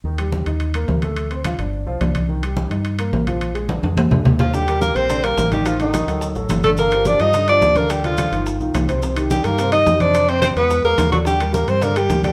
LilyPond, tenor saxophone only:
\new Staff \with { instrumentName = "Tenor saxophone" } { \time 4/4 \key ees \major \tempo 4 = 214 r1 | r1 | r1 | r2. r8 f8 |
g4 bes8 c'4 bes4 g8 | f8 ees2 r4 a8 | bes4 d'8 ees'4 d'4 bes8 | g8 f2 r4. |
r4 g8 bes4 ees'4 d'8~ | d'8 c'8 c'8 ces'4 ais4 ges8 | g4 bes8 c'8 bes8 g4 g8 | }